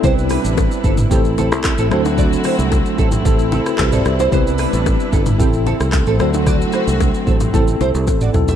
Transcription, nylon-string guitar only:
\new Staff \with { instrumentName = "Nylon-string guitar" } { \time 4/4 \key a \dorian \tempo 4 = 112 <e' c''>16 r16 <d' b'>16 r8. <c' a'>16 r16 <c' g'>16 r16 <c' a'>16 r8 <c' a'>16 <fis' c''>16 r16 | <fis' d''>16 r16 <e' c''>16 r8. <c' a'>16 r16 <c' g'>16 r16 <c' a'>16 r8 <c' a'>16 r16 <e' c''>16 | <e' c''>16 r16 <d' b'>16 r8. <c' a'>16 r16 <c' g'>16 r16 <c' a'>16 r8 <c' a'>16 <fis' c''>16 r16 | <fis' d''>16 r16 <e' c''>16 r8. <c' a'>16 r16 <c' a'>16 r16 <e' c''>16 r8 <fis' d''>16 r16 <g' e''>16 | }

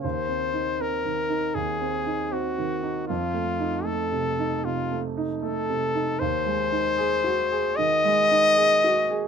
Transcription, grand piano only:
\new Staff \with { instrumentName = "Grand piano" } { \time 4/4 \key f \phrygian \tempo 4 = 78 \tuplet 3/2 { ees,8 c'8 ees'8 c'8 ees8 ees'8 ees,8 c'8 ees'8 c'8 ees8 ees'8 } | \tuplet 3/2 { f,8 a8 ees'8 a8 c8 ees'8 c8 a8 ees'8 a8 c8 ees'8 } | \key aes \mixolydian \tuplet 3/2 { ees,8 aes8 ees'8 aes'8 ges'8 aes'8 ees8 aes8 ees'8 aes'8 ges'8 aes'8 } | }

